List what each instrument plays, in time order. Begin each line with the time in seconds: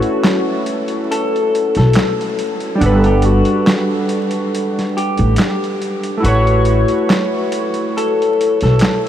Already playing: synth keys A3 C#4 E4 F#4 A4 B4 C#5, clean electric guitar F#4
0.02 closed hi-hat
0.24 snare, clap, closed hi-hat
0.66 closed hi-hat
0.88 closed hi-hat
1.11 clean electric guitar A4, closed hi-hat
1.36 closed hi-hat
1.55 closed hi-hat
1.75 upright bass B1, clean electric guitar A4, snare, closed hi-hat
1.93 snare, clap, closed hi-hat
2.21 closed hi-hat
2.39 closed hi-hat
2.60 closed hi-hat
2.75 synth keys G3 D4
2.81 upright bass G1, synth keys A4 F#5, closed hi-hat
2.86 synth keys B4
3.04 clean electric guitar G4, closed hi-hat
3.22 clean electric guitar F#4, closed hi-hat
3.45 closed hi-hat
3.67 snare, clap, closed hi-hat
4.09 closed hi-hat
4.31 closed hi-hat
4.55 closed hi-hat
4.79 snare, closed hi-hat
4.97 clean electric guitar G4, closed hi-hat
5.18 upright bass A1, closed hi-hat
5.36 snare, clap, closed hi-hat
5.64 closed hi-hat
5.82 closed hi-hat
6.03 closed hi-hat
6.17 synth keys A3 E4
6.23 upright bass A1, synth keys F#4 B4, clean electric guitar F#4, closed hi-hat
6.28 synth keys C#5
6.47 closed hi-hat
6.65 closed hi-hat
6.88 closed hi-hat
7.10 snare, clap, closed hi-hat
7.52 closed hi-hat
7.74 closed hi-hat
7.97 clean electric guitar A4, closed hi-hat
8.22 closed hi-hat
8.41 closed hi-hat
8.61 upright bass B1, clean electric guitar A4, snare, closed hi-hat
8.79 snare, clap, closed hi-hat